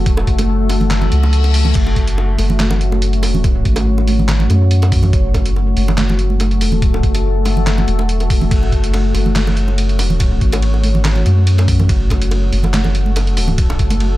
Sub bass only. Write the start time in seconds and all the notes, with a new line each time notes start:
Already playing: F1
0.14 E1
0.27 F#1
1.12 C#2
1.75 F#1
2.39 F#1
3.65 G#1
4.50 F#2
5.13 F#1
5.77 F#1
7.03 F#1
7.88 E1
8.51 F#1
9.15 F#1
10.41 G#1
11.26 F#2
11.89 F#1
12.53 F#1
13.79 F#1